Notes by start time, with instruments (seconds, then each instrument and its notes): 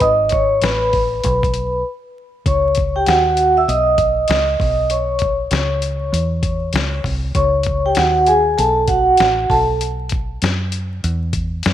0.00 fingered electric bass G#1, vibraphone D#5 D#6, kick, closed hi-hat
0.29 vibraphone C#5 C#6, kick, closed hi-hat
0.62 fingered electric bass A1, vibraphone B4 B5, snare, closed hi-hat
0.93 kick, open hi-hat
1.24 fingered electric bass B1, kick, closed hi-hat
1.43 kick, closed hi-hat
1.54 closed hi-hat
2.46 fingered electric bass C#2, vibraphone C#5 C#6, kick, closed hi-hat
2.75 kick, closed hi-hat
2.96 vibraphone G4 G5
3.06 fingered electric bass D#2, vibraphone F#4 F#5, snare, closed hi-hat
3.37 closed hi-hat
3.57 vibraphone E5 E6
3.68 fingered electric bass B1, vibraphone D#5 D#6, closed hi-hat
3.98 kick, closed hi-hat
4.28 fingered electric bass C#2, snare, closed hi-hat
4.60 fingered electric bass B1, kick, open hi-hat
4.90 vibraphone C#5 C#6, closed hi-hat
5.19 kick, closed hi-hat
5.51 fingered electric bass C#2, snare, closed hi-hat
5.82 closed hi-hat
6.13 fingered electric bass E2, closed hi-hat
6.43 kick, closed hi-hat
6.73 fingered electric bass C#2, snare, closed hi-hat
7.04 fingered electric bass C2, kick, open hi-hat
7.35 fingered electric bass C#2, vibraphone C#5 C#6, kick, closed hi-hat
7.63 kick, closed hi-hat
7.86 vibraphone G4 G5
7.95 fingered electric bass D#2, vibraphone F#4 F#5, snare, closed hi-hat
8.26 vibraphone G#4 G#5, closed hi-hat
8.58 fingered electric bass B1, vibraphone A4 A5, closed hi-hat
8.88 vibraphone F#4 F#5, kick, closed hi-hat
9.17 fingered electric bass A1, snare, closed hi-hat
9.50 fingered electric bass B1, vibraphone A4 A5, kick, open hi-hat
9.81 closed hi-hat
10.09 kick, closed hi-hat
10.42 fingered electric bass F#2, snare, closed hi-hat
10.72 closed hi-hat
11.04 fingered electric bass E2, closed hi-hat
11.33 kick, closed hi-hat
11.63 fingered electric bass F#2, snare, closed hi-hat